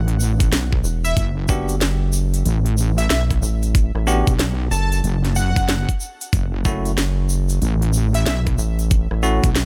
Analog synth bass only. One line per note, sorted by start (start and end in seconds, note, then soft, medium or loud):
0.84 1.15 E1 medium
1.49 2.44 F#1 loud
3.42 3.92 A1 loud
3.95 4.24 A1 loud
4.71 5.02 F#1 loud
6.65 7.60 F#1 loud
8.59 9.08 A1 loud
9.11 9.40 A1 loud